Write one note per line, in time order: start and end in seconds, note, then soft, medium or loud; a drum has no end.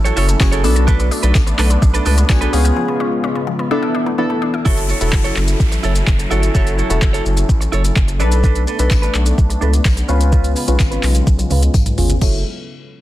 0.00 0.11 A1 loud
0.00 0.61 F#3 medium
0.00 0.61 C#4 medium
0.00 0.61 E4 medium
0.00 0.61 A4 medium
0.04 0.15 E4 medium
0.04 0.15 F#4 medium
0.04 0.16 A4 medium
0.04 0.17 C#5 medium
0.04 closed hi-hat medium
0.04 shaker medium
0.16 0.35 F#1 loud
0.16 0.35 E4 loud
0.16 0.27 E4 medium
0.16 0.28 A4 loud
0.16 0.27 C#5 loud
0.16 open hi-hat medium
0.16 shaker medium
0.28 0.39 A3 medium
0.28 muted clean electric guitar stroke medium
0.28 closed hi-hat medium
0.28 shaker medium
0.40 0.66 F#1 loud
0.40 0.51 F#3 medium
0.40 0.64 C#4 medium
0.40 0.64 E4 medium
0.40 0.63 F#4 medium
0.40 0.64 G#4 loud
0.40 muted clean electric guitar stroke soft
0.40 kick loud
0.40 clap loud
0.40 tambourine medium
0.40 shaker medium
0.52 0.62 A3 medium
0.52 0.63 E4 medium
0.52 0.63 A4 medium
0.52 0.65 C#5 medium
0.52 closed hi-hat medium
0.52 shaker medium
0.64 1.10 B1 loud
0.64 2.51 A3 medium
0.64 1.40 B3 loud
0.64 3.68 B3 medium
0.64 1.40 D4 medium
0.64 0.74 D4 medium
0.64 2.51 D4 loud
0.64 1.40 F#4 medium
0.64 1.40 A4 loud
0.64 open hi-hat medium
0.64 shaker medium
0.76 0.86 A4 medium
0.76 muted clean electric guitar stroke soft
0.76 closed hi-hat medium
0.76 shaker medium
0.87 0.98 A3 loud
0.87 1.09 D4 loud
0.87 1.10 A4 medium
0.87 1.10 B4 loud
0.87 kick loud
0.87 shaker medium
0.99 1.10 B3 medium
0.99 closed hi-hat medium
0.99 shaker soft
1.11 1.21 D4 medium
1.11 muted clean electric guitar stroke soft
1.11 open hi-hat medium
1.11 shaker medium
1.23 1.32 B1 medium
1.23 1.33 D4 medium
1.23 1.34 A4 medium
1.23 1.35 B4 medium
1.23 closed hi-hat medium
1.23 shaker medium
1.35 1.53 A1 medium
1.35 1.45 D4 medium
1.35 muted clean electric guitar stroke soft
1.35 kick loud
1.35 clap loud
1.35 tambourine medium
1.35 shaker medium
1.47 1.57 B3 medium
1.47 muted clean electric guitar stroke medium
1.47 closed hi-hat medium
1.47 shaker medium
1.58 1.77 B1 medium
1.58 1.69 A3 medium
1.58 1.77 D4 medium
1.58 1.70 A4 medium
1.58 1.69 B4 loud
1.58 clap medium
1.58 open hi-hat medium
1.58 shaker medium
1.70 1.80 B3 medium
1.70 muted clean electric guitar stroke soft
1.70 closed hi-hat medium
1.70 shaker medium
1.82 2.00 B1 loud
1.82 1.92 D4 loud
1.82 muted clean electric guitar stroke soft
1.82 kick loud
1.82 shaker medium
1.94 2.04 D4 medium
1.94 2.04 A4 medium
1.94 2.05 A4 medium
1.94 2.06 B4 medium
1.94 closed hi-hat medium
1.94 shaker medium
2.05 2.24 C#2 medium
2.05 2.25 D4 medium
2.05 2.16 D4 medium
2.05 2.18 A4 medium
2.05 2.16 B4 loud
2.05 open hi-hat medium
2.05 shaker medium
2.17 2.28 B3 medium
2.17 muted clean electric guitar stroke soft
2.17 closed hi-hat medium
2.17 shaker medium
2.29 2.48 B1 medium
2.29 2.40 A3 medium
2.29 2.52 B3 medium
2.29 2.53 D4 medium
2.29 2.53 F#4 medium
2.29 2.52 G#4 loud
2.29 muted clean electric guitar stroke soft
2.29 kick loud
2.29 clap loud
2.29 tambourine medium
2.29 shaker medium
2.41 2.51 B3 medium
2.41 2.53 D4 medium
2.41 2.53 A4 medium
2.41 2.53 B4 medium
2.41 closed hi-hat medium
2.41 shaker medium
2.53 2.71 C#2 medium
2.53 3.70 C#3 medium
2.53 3.70 G#3 medium
2.53 3.29 B3 loud
2.53 2.63 C#4 medium
2.53 3.29 C#4 medium
2.53 3.70 F4 medium
2.53 3.29 F4 medium
2.53 3.29 G#4 loud
2.53 muted clean electric guitar stroke soft
2.53 open hi-hat medium
2.53 shaker medium
2.65 2.75 F4 medium
2.65 muted clean electric guitar stroke soft
2.65 closed hi-hat medium
2.65 shaker medium
2.77 2.87 F3 loud
2.88 2.99 B3 medium
3.00 3.10 C#4 medium
3.24 3.34 C#4 medium
3.35 3.46 B3 medium
3.47 3.57 F3 medium
3.59 3.69 B3 medium
3.71 4.65 E3 medium
3.71 4.09 B3 medium
3.71 4.65 B3 medium
3.71 3.81 D4 loud
3.71 4.09 D4 medium
3.71 4.65 D4 medium
3.71 4.09 E4 medium
3.71 4.09 A4 loud
3.71 4.64 A4 medium
3.83 3.93 E4 medium
3.95 4.05 D4 medium
4.06 4.17 A3 medium
4.18 4.28 E3 medium
4.18 4.53 B3 medium
4.18 4.53 D4 medium
4.18 4.53 E4 medium
4.18 4.53 A4 loud
4.30 4.40 A3 medium
4.42 4.52 D4 medium
4.54 4.64 E4 medium
4.65 4.93 F#1 loud
4.65 8.16 F#3 medium
4.65 8.16 C#4 medium
4.65 4.84 E4 medium
4.65 4.91 E4 medium
4.65 8.16 E4 medium
4.65 4.92 F#4 medium
4.65 8.16 A4 medium
4.65 4.92 A4 loud
4.65 4.85 A4 medium
4.65 4.85 C#5 medium
4.65 kick loud
4.65 downlifter medium
4.65 shaker medium
4.77 closed hi-hat soft
4.77 shaker soft
4.89 5.02 E4 medium
4.89 5.01 A4 medium
4.89 5.00 C#5 medium
4.89 shaker medium
5.01 5.10 E1 medium
5.01 5.70 E4 medium
5.01 5.12 E4 medium
5.01 5.70 F#4 medium
5.01 5.71 A4 medium
5.01 5.12 A4 medium
5.01 5.13 C#5 medium
5.01 closed hi-hat medium
5.01 shaker medium
5.13 5.31 F#1 medium
5.13 muted clean electric guitar stroke soft
5.13 kick loud
5.13 clap loud
5.13 shaker medium
5.24 5.35 E4 medium
5.24 5.36 A4 medium
5.24 5.36 C#5 medium
5.24 closed hi-hat soft
5.24 shaker soft
5.36 5.55 F#1 loud
5.36 muted clean electric guitar stroke soft
5.36 clap medium
5.36 shaker medium
5.48 muted clean electric guitar stroke soft
5.48 closed hi-hat medium
5.48 shaker medium
5.60 5.78 A1 medium
5.60 kick loud
5.60 shaker medium
5.72 muted clean electric guitar stroke soft
5.72 closed hi-hat medium
5.72 shaker medium
5.83 6.02 F#1 medium
5.83 6.02 E4 medium
5.83 5.96 A4 medium
5.83 5.94 C#5 medium
5.83 shaker soft
5.95 muted clean electric guitar stroke soft
5.95 closed hi-hat medium
5.95 shaker medium
6.07 6.26 F#1 loud
6.07 muted clean electric guitar stroke soft
6.07 kick loud
6.07 clap loud
6.07 shaker medium
6.19 muted clean electric guitar stroke soft
6.19 closed hi-hat medium
6.19 shaker medium
6.31 6.49 G1 loud
6.31 6.43 E4 medium
6.31 6.48 E4 medium
6.31 6.48 F#4 medium
6.31 6.48 A4 medium
6.31 6.42 A4 medium
6.31 6.41 C#5 loud
6.31 shaker medium
6.42 6.53 E4 soft
6.42 6.54 A4 medium
6.42 6.55 C#5 medium
6.42 closed hi-hat medium
6.42 shaker medium
6.54 6.82 F#1 loud
6.54 6.73 E4 medium
6.54 6.80 E4 medium
6.54 6.81 F#4 medium
6.54 6.81 A4 medium
6.54 6.74 A4 medium
6.54 6.74 C#5 medium
6.54 kick loud
6.54 shaker medium
6.67 closed hi-hat soft
6.67 shaker soft
6.78 6.90 E4 medium
6.78 6.89 A4 medium
6.78 6.88 C#5 medium
6.78 shaker medium
6.90 6.99 E1 medium
6.90 7.59 E4 medium
6.90 7.01 E4 medium
6.90 7.59 F#4 medium
6.90 7.60 A4 medium
6.90 7.01 A4 medium
6.90 7.02 C#5 medium
6.90 closed hi-hat medium
6.90 shaker medium
7.02 7.20 F#1 medium
7.02 kick loud
7.02 clap loud
7.02 shaker medium
7.13 7.24 E4 medium
7.13 7.25 A4 medium
7.13 7.25 C#5 medium
7.13 closed hi-hat soft
7.13 shaker soft
7.25 7.44 F#1 loud
7.25 muted clean electric guitar stroke soft
7.25 shaker medium
7.37 muted clean electric guitar stroke soft
7.37 closed hi-hat medium
7.37 shaker medium
7.49 7.67 A1 medium
7.49 kick loud
7.49 shaker medium
7.61 muted clean electric guitar stroke medium
7.61 closed hi-hat medium
7.61 shaker medium
7.72 7.91 F#1 medium
7.72 7.91 E4 medium
7.72 7.84 A4 loud
7.72 7.83 C#5 loud
7.72 shaker medium
7.84 muted clean electric guitar stroke soft
7.84 closed hi-hat medium
7.84 shaker medium
7.96 8.22 F#1 loud
7.96 muted clean electric guitar stroke soft
7.96 kick loud
7.96 clap loud
7.96 shaker medium
8.08 muted clean electric guitar stroke soft
8.08 closed hi-hat medium
8.08 shaker medium
8.20 8.66 B1 loud
8.20 10.07 A3 medium
8.20 12.18 B3 medium
8.20 8.32 D4 medium
8.20 8.67 D4 medium
8.20 10.07 D4 medium
8.20 8.67 A4 medium
8.20 8.31 A4 medium
8.20 8.67 B4 loud
8.20 8.30 B4 loud
8.20 shaker medium
8.31 8.42 D4 soft
8.31 8.43 A4 medium
8.31 8.44 B4 medium
8.31 closed hi-hat medium
8.31 shaker medium
8.43 8.62 D4 medium
8.43 8.63 A4 medium
8.43 8.63 B4 medium
8.43 kick loud
8.43 shaker medium
8.55 closed hi-hat soft
8.55 shaker soft
8.67 8.80 D4 medium
8.67 8.79 A4 medium
8.67 8.78 B4 medium
8.67 shaker medium
8.79 8.88 B1 medium
8.79 9.48 D4 medium
8.79 8.90 D4 medium
8.79 9.48 A4 medium
8.79 8.90 A4 medium
8.79 8.91 B4 medium
8.79 9.49 B4 medium
8.79 closed hi-hat medium
8.79 shaker medium
8.91 9.09 A1 medium
8.91 muted clean electric guitar stroke soft
8.91 kick loud
8.91 clap loud
8.91 tambourine medium
8.91 shaker medium
9.02 9.13 D4 medium
9.02 9.14 A4 medium
9.02 9.14 B4 medium
9.02 closed hi-hat medium
9.02 shaker soft
9.14 9.33 B1 medium
9.14 muted clean electric guitar stroke soft
9.14 clap medium
9.14 shaker medium
9.26 muted clean electric guitar stroke soft
9.26 closed hi-hat medium
9.26 shaker medium
9.38 9.56 B1 loud
9.38 kick loud
9.38 shaker medium
9.50 muted clean electric guitar stroke soft
9.50 closed hi-hat medium
9.50 shaker medium
9.61 9.80 C#2 medium
9.61 9.80 D4 medium
9.61 9.73 A4 loud
9.61 9.72 B4 medium
9.61 shaker medium
9.73 muted clean electric guitar stroke soft
9.73 closed hi-hat medium
9.73 shaker medium
9.85 10.03 B1 loud
9.85 muted clean electric guitar stroke soft
9.85 kick loud
9.85 clap loud
9.85 tambourine medium
9.85 shaker medium
9.97 muted clean electric guitar stroke soft
9.97 closed hi-hat medium
9.97 shaker medium
10.08 10.54 C#2 medium
10.08 12.20 C#3 medium
10.08 12.19 G#3 medium
10.08 10.21 C#4 medium
10.08 10.56 C#4 medium
10.08 10.56 F4 medium
10.08 12.19 F4 medium
10.08 10.20 F4 loud
10.08 10.56 B4 loud
10.08 10.19 B4 loud
10.08 shaker medium
10.20 10.31 C#4 medium
10.20 10.32 F4 medium
10.20 10.33 B4 medium
10.20 closed hi-hat medium
10.20 shaker medium
10.32 10.51 C#4 medium
10.32 10.52 F4 medium
10.32 10.52 B4 medium
10.32 kick loud
10.32 shaker medium
10.44 closed hi-hat soft
10.44 shaker soft
10.56 10.68 C#4 medium
10.56 10.67 F4 medium
10.56 10.66 B4 medium
10.56 open hi-hat medium
10.56 shaker medium
10.68 10.77 B1 medium
10.68 11.37 C#4 medium
10.68 10.78 C#4 medium
10.68 11.37 F4 medium
10.68 10.79 F4 medium
10.68 10.80 B4 medium
10.68 11.37 B4 medium
10.68 closed hi-hat medium
10.68 shaker medium
10.80 10.98 G#1 medium
10.80 muted clean electric guitar stroke medium
10.80 kick loud
10.80 clap loud
10.80 tambourine medium
10.80 shaker medium
10.91 11.02 C#4 medium
10.91 11.03 F4 medium
10.91 11.03 B4 medium
10.91 closed hi-hat medium
10.91 shaker medium
11.03 11.22 B1 medium
11.03 clap medium
11.03 open hi-hat medium
11.03 shaker medium
11.15 muted clean electric guitar stroke soft
11.15 closed hi-hat medium
11.15 shaker medium
11.27 11.45 B1 loud
11.27 kick loud
11.27 high tom medium
11.27 shaker medium
11.39 muted clean electric guitar stroke medium
11.39 closed hi-hat medium
11.39 high tom medium
11.39 shaker medium
11.50 11.69 C#2 loud
11.50 11.69 C#4 medium
11.50 11.63 F4 medium
11.50 11.61 B4 medium
11.50 open hi-hat medium
11.50 mid tom medium
11.50 shaker medium
11.63 muted clean electric guitar stroke medium
11.63 closed hi-hat medium
11.63 shaker medium
11.74 11.92 B1 loud
11.74 muted clean electric guitar stroke soft
11.74 kick loud
11.74 mid tom loud
11.74 tambourine medium
11.74 shaker medium
11.86 muted clean electric guitar stroke medium
11.86 closed hi-hat medium
11.86 mid tom medium
11.86 shaker medium
11.98 12.16 G1 loud
11.98 12.15 C#4 medium
11.98 12.15 F4 medium
11.98 12.15 G#4 loud
11.98 floor tom loud
11.98 open hi-hat medium
11.98 shaker medium
12.10 muted clean electric guitar stroke soft
12.10 closed hi-hat medium
12.10 floor tom loud
12.10 shaker medium
12.21 12.44 F#1 loud
12.21 12.44 F#3 medium
12.21 12.44 C#4 medium
12.21 12.36 E4 medium
12.21 12.44 E4 medium
12.21 12.44 F#4 medium
12.21 12.44 A4 medium
12.21 12.36 A4 medium
12.21 12.36 C#5 medium
12.21 kick loud
12.21 crash medium
12.21 tambourine medium